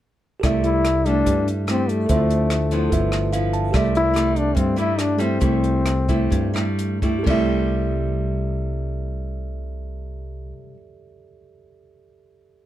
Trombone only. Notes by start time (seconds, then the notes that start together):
0.65 E4
1.07 D4
1.70 C4
1.90 A3
3.97 E4
4.38 D4
4.57 C4
4.79 E4
5.00 D4
5.22 C4